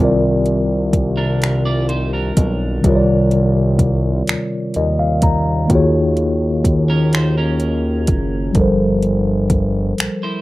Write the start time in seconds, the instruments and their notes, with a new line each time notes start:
Already playing: tine electric piano G3 C4
0.00 analog synth bass C2, tine electric piano D#3 F4 A#4
0.05 tine electric piano D5
0.46 closed hi-hat
0.93 kick, closed hi-hat
1.17 clean electric guitar D4 A#4
1.42 finger snap, closed hi-hat
1.66 clean electric guitar F4 D5
1.89 clean electric guitar D#4 C5, closed hi-hat
2.13 clean electric guitar D4 A#4
2.37 analog synth bass B1, kick, closed hi-hat
2.81 analog synth bass C2, tine electric piano C3 D#3 G3, kick, closed hi-hat
2.86 tine electric piano F4 A#4 C#5
2.96 tine electric piano D5
3.31 closed hi-hat
3.79 kick, closed hi-hat
4.27 analog synth bass D#2, finger snap, closed hi-hat
4.74 analog synth bass D#2, tine electric piano D#5, closed hi-hat
4.99 tine electric piano F5
5.22 tine electric piano A#5, kick, closed hi-hat
5.67 analog synth bass D#2, tine electric piano D#3 A#3 F4, kick, closed hi-hat
5.72 tine electric piano F#4 G#4 C#5
6.17 closed hi-hat
6.65 kick, closed hi-hat
6.90 clean electric guitar C#4 A#4
7.13 clean electric guitar D#4 C5, finger snap, closed hi-hat
7.38 clean electric guitar C#4 A#4
7.60 closed hi-hat
8.07 analog synth bass F#1, kick, closed hi-hat
8.52 analog synth bass G1, tine electric piano F3 G3, kick, closed hi-hat
8.57 tine electric piano A4 A#4
8.61 tine electric piano C5
9.02 closed hi-hat
9.50 kick, closed hi-hat
9.98 analog synth bass A#1, finger snap, closed hi-hat
10.23 clean electric guitar E4 C5